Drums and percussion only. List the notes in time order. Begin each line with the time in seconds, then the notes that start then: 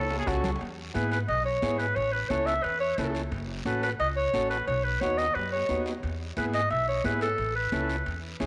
0.10 low timbale
0.22 low timbale
0.27 bombo low, bombo rim, cowbell, short guiro
0.33 low timbale
0.44 low conga, low timbale, short guiro
0.56 low timbale
0.61 high conga, high timbale, long guiro
0.94 high conga, high timbale, short guiro
1.12 high timbale, short guiro
1.28 high conga, high timbale, long guiro
1.62 high conga, high timbale, low timbale, short guiro
1.80 high timbale, short guiro
1.96 high conga, high timbale, long guiro
2.30 high conga, high timbale, short guiro
2.47 high timbale, short guiro
2.64 high conga, high timbale, long guiro
2.98 high conga, high timbale, short guiro
3.15 high timbale, short guiro
3.32 high conga, high timbale, long guiro
3.65 high conga, high timbale, short guiro
3.83 high timbale, short guiro
4.00 high conga, high timbale, long guiro
4.34 high conga, high timbale, short guiro
4.51 high timbale, short guiro
4.67 high conga, high timbale, long guiro
5.01 high conga, high timbale, short guiro
5.18 high timbale, short guiro
5.35 high conga, low timbale, long guiro
5.52 low timbale
5.69 high conga, low timbale, short guiro
5.86 low timbale, short guiro
6.03 high conga, high timbale, long guiro
6.37 high conga, high timbale, short guiro
6.54 high timbale, short guiro
6.71 high conga, high timbale, long guiro
7.04 high conga, high timbale, low timbale, short guiro
7.21 high timbale, short guiro
7.38 high conga, high timbale, long guiro
7.72 high conga, high timbale, short guiro
7.90 high timbale, short guiro
8.06 high conga, high timbale, long guiro
8.40 high conga, high timbale, low timbale, short guiro